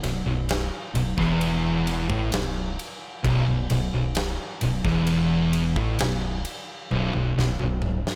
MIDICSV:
0, 0, Header, 1, 4, 480
1, 0, Start_track
1, 0, Tempo, 917431
1, 1700, Time_signature, 4, 2, 24, 8
1, 4266, End_track
2, 0, Start_track
2, 0, Title_t, "Distorted electric guitar"
2, 0, Program_c, 0, 30
2, 21, Note_on_c, 0, 35, 77
2, 130, Note_off_c, 0, 35, 0
2, 136, Note_on_c, 0, 35, 71
2, 329, Note_off_c, 0, 35, 0
2, 495, Note_on_c, 0, 35, 78
2, 613, Note_off_c, 0, 35, 0
2, 615, Note_on_c, 0, 40, 100
2, 1090, Note_off_c, 0, 40, 0
2, 1097, Note_on_c, 0, 45, 104
2, 1211, Note_off_c, 0, 45, 0
2, 1218, Note_on_c, 0, 35, 76
2, 1411, Note_off_c, 0, 35, 0
2, 1693, Note_on_c, 0, 35, 116
2, 1809, Note_off_c, 0, 35, 0
2, 1819, Note_on_c, 0, 35, 79
2, 1932, Note_off_c, 0, 35, 0
2, 1938, Note_on_c, 0, 35, 72
2, 2053, Note_off_c, 0, 35, 0
2, 2059, Note_on_c, 0, 35, 66
2, 2252, Note_off_c, 0, 35, 0
2, 2419, Note_on_c, 0, 35, 77
2, 2534, Note_off_c, 0, 35, 0
2, 2536, Note_on_c, 0, 40, 108
2, 3010, Note_off_c, 0, 40, 0
2, 3022, Note_on_c, 0, 45, 95
2, 3133, Note_off_c, 0, 45, 0
2, 3142, Note_on_c, 0, 35, 87
2, 3332, Note_off_c, 0, 35, 0
2, 3619, Note_on_c, 0, 35, 116
2, 3731, Note_off_c, 0, 35, 0
2, 3741, Note_on_c, 0, 35, 81
2, 3856, Note_off_c, 0, 35, 0
2, 3862, Note_on_c, 0, 35, 70
2, 3972, Note_off_c, 0, 35, 0
2, 3978, Note_on_c, 0, 35, 65
2, 4169, Note_off_c, 0, 35, 0
2, 4266, End_track
3, 0, Start_track
3, 0, Title_t, "Fingered electric bass"
3, 0, Program_c, 1, 33
3, 11, Note_on_c, 1, 23, 91
3, 126, Note_off_c, 1, 23, 0
3, 132, Note_on_c, 1, 23, 75
3, 358, Note_off_c, 1, 23, 0
3, 490, Note_on_c, 1, 23, 83
3, 606, Note_off_c, 1, 23, 0
3, 614, Note_on_c, 1, 28, 100
3, 1076, Note_off_c, 1, 28, 0
3, 1096, Note_on_c, 1, 33, 98
3, 1209, Note_off_c, 1, 33, 0
3, 1215, Note_on_c, 1, 23, 82
3, 1440, Note_off_c, 1, 23, 0
3, 1696, Note_on_c, 1, 23, 107
3, 1809, Note_off_c, 1, 23, 0
3, 1816, Note_on_c, 1, 23, 77
3, 1929, Note_off_c, 1, 23, 0
3, 1936, Note_on_c, 1, 23, 89
3, 2049, Note_off_c, 1, 23, 0
3, 2055, Note_on_c, 1, 23, 73
3, 2280, Note_off_c, 1, 23, 0
3, 2421, Note_on_c, 1, 23, 81
3, 2532, Note_off_c, 1, 23, 0
3, 2536, Note_on_c, 1, 28, 98
3, 2996, Note_off_c, 1, 28, 0
3, 3013, Note_on_c, 1, 33, 105
3, 3127, Note_off_c, 1, 33, 0
3, 3137, Note_on_c, 1, 23, 76
3, 3360, Note_off_c, 1, 23, 0
3, 3621, Note_on_c, 1, 23, 99
3, 3731, Note_off_c, 1, 23, 0
3, 3737, Note_on_c, 1, 23, 71
3, 3849, Note_off_c, 1, 23, 0
3, 3854, Note_on_c, 1, 23, 82
3, 3967, Note_off_c, 1, 23, 0
3, 3982, Note_on_c, 1, 23, 76
3, 4202, Note_off_c, 1, 23, 0
3, 4266, End_track
4, 0, Start_track
4, 0, Title_t, "Drums"
4, 19, Note_on_c, 9, 51, 81
4, 28, Note_on_c, 9, 38, 36
4, 71, Note_off_c, 9, 51, 0
4, 80, Note_off_c, 9, 38, 0
4, 256, Note_on_c, 9, 51, 97
4, 265, Note_on_c, 9, 38, 111
4, 308, Note_off_c, 9, 51, 0
4, 318, Note_off_c, 9, 38, 0
4, 498, Note_on_c, 9, 51, 74
4, 550, Note_off_c, 9, 51, 0
4, 616, Note_on_c, 9, 36, 100
4, 627, Note_on_c, 9, 38, 30
4, 668, Note_off_c, 9, 36, 0
4, 679, Note_off_c, 9, 38, 0
4, 738, Note_on_c, 9, 51, 98
4, 790, Note_off_c, 9, 51, 0
4, 979, Note_on_c, 9, 51, 72
4, 1031, Note_off_c, 9, 51, 0
4, 1097, Note_on_c, 9, 36, 118
4, 1149, Note_off_c, 9, 36, 0
4, 1214, Note_on_c, 9, 51, 105
4, 1223, Note_on_c, 9, 38, 121
4, 1266, Note_off_c, 9, 51, 0
4, 1275, Note_off_c, 9, 38, 0
4, 1461, Note_on_c, 9, 51, 70
4, 1513, Note_off_c, 9, 51, 0
4, 1698, Note_on_c, 9, 36, 115
4, 1699, Note_on_c, 9, 51, 95
4, 1750, Note_off_c, 9, 36, 0
4, 1751, Note_off_c, 9, 51, 0
4, 1935, Note_on_c, 9, 51, 75
4, 1987, Note_off_c, 9, 51, 0
4, 2171, Note_on_c, 9, 51, 105
4, 2180, Note_on_c, 9, 38, 110
4, 2223, Note_off_c, 9, 51, 0
4, 2233, Note_off_c, 9, 38, 0
4, 2412, Note_on_c, 9, 51, 79
4, 2465, Note_off_c, 9, 51, 0
4, 2535, Note_on_c, 9, 36, 107
4, 2545, Note_on_c, 9, 38, 32
4, 2588, Note_off_c, 9, 36, 0
4, 2597, Note_off_c, 9, 38, 0
4, 2651, Note_on_c, 9, 51, 106
4, 2703, Note_off_c, 9, 51, 0
4, 2894, Note_on_c, 9, 51, 84
4, 2946, Note_off_c, 9, 51, 0
4, 3015, Note_on_c, 9, 36, 108
4, 3067, Note_off_c, 9, 36, 0
4, 3133, Note_on_c, 9, 51, 120
4, 3142, Note_on_c, 9, 38, 121
4, 3185, Note_off_c, 9, 51, 0
4, 3195, Note_off_c, 9, 38, 0
4, 3374, Note_on_c, 9, 51, 82
4, 3426, Note_off_c, 9, 51, 0
4, 3616, Note_on_c, 9, 48, 63
4, 3669, Note_off_c, 9, 48, 0
4, 3732, Note_on_c, 9, 48, 58
4, 3785, Note_off_c, 9, 48, 0
4, 3865, Note_on_c, 9, 38, 75
4, 3917, Note_off_c, 9, 38, 0
4, 3973, Note_on_c, 9, 48, 68
4, 4026, Note_off_c, 9, 48, 0
4, 4090, Note_on_c, 9, 47, 80
4, 4143, Note_off_c, 9, 47, 0
4, 4222, Note_on_c, 9, 38, 79
4, 4266, Note_off_c, 9, 38, 0
4, 4266, End_track
0, 0, End_of_file